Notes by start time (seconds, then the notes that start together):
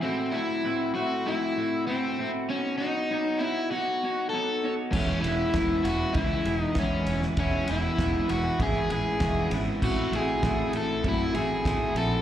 0.02 A2 A3 C4 E4 F#4
0.32 A2 A3 C4 E4 F#4
0.64 A2 A3 C4 E4 F#4
0.94 A2 A3 C4 E4 F#4
1.26 A2 A3 C4 E4 F#4
1.56 A2 A3 C4 E4 F#4
1.87 A2 A3 C4 E4 F#4
2.19 A2 A3 C4 E4 F#4
2.48 B3 C#4 D#4 F#4 C#5
2.78 B3 D#4 F#4 C#5
3.11 B3 D#4 F#4 C#5
3.39 B3 D#4 E4 F#4 C#5
3.71 B3 D#4 F#4 C#5
4.03 B3 D#4 F#4 C#5
4.30 B3 A4
4.34 D#4 F#4 C#5
4.64 B3 D#4 F#4 C#5
4.92 E1 E2 E3 G#3 B3 C#4 E4, kick, crash
5.22 E1 E2 E3 G#3 E4, ride
5.26 B3 C#4 E4
5.54 E1 E2 E3 G#3 B3 C#4 E4, kick, snare, ride
5.84 E1 E2 E3 G#3 B3 C#4 E4 F#4, ride
6.13 C#2 E2 E3 G#3 B3 C#4 E4, kick, ride
6.18 E4
6.45 E1 E2 E3 G#3 B3 C#4 E4, ride
6.59 D#4
6.75 E2 E3 G#3 B3 C#4 E4, kick, snare, ride
6.79 C#4
7.07 E1 E2 E3 G#3 B3 C#4 E4, ride
7.22 snare
7.37 E1 E2 E3 G#3 B3 C#4 E4, kick, ride
7.67 E1 E2 E3 G#3 B3 C#4 E4, ride
7.71 E4
7.97 E1 E2 E3 G#3 B3 C#4 E4, kick, snare, ride
8.27 E1 E2 E3 G#3 B3 C#4 E4 F#4, ride
8.59 G#1 E2 E3 G#3 B3 C#4 E4 G#4, kick, ride
8.89 A1 E2 E3 G#3 B3 C#4 E4 G#4, ride
9.20 E1 E2 E3 G#3 B3 C#4 E4, kick, snare, ride
9.51 G#1 E2 E3 G#3 B3 C#4 E4, ride
9.82 A1 A2 A3 C4 E4 F#4, kick, crash
10.12 A1 A2 A3 C4 E4 F#4, ride
10.16 G#4
10.42 A1 A2 A3 C4 E4 F#4, kick, snare, ride
10.73 A1 A2 A3 C4 E4 F#4, ride
10.77 A4
11.03 F#2 A2 A3 C4 E4 F#4, kick, ride
11.09 E4
11.34 A1 A2 A3 C4 E4 F#4 G#4, ride
11.64 A2 A3 C4 E4 F#4, kick, snare, ride
11.95 A#1 A2 A3 C4 E4 F#4 A4, ride